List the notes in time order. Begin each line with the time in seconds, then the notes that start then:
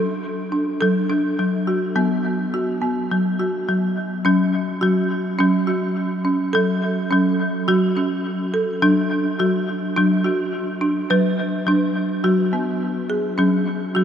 Already playing: F#3 A4
0.52 D4
0.81 F#3 A4
1.09 D4
1.39 F#3
1.67 F#4
1.96 F#3 B3
2.54 F#4
2.82 B3
3.12 F#3
3.39 F#4
3.69 F#3
4.25 F#3 C#4
4.81 F#3 F#4
5.39 F#3 C#4
5.67 F#4
6.25 C#4
6.53 F#3 A4
7.11 F#3 C#4
7.68 F#3 F#4
7.97 C#4
8.54 A4
8.82 F#3 D4
9.39 F#3 F#4
9.96 F#3 D4
10.24 F#4
10.81 D4
11.10 F#3 B4
11.67 F#3 D4
12.24 F#3 F#4
12.53 B3
13.10 G#4
13.38 F#3 C#4
13.95 F#3 F#4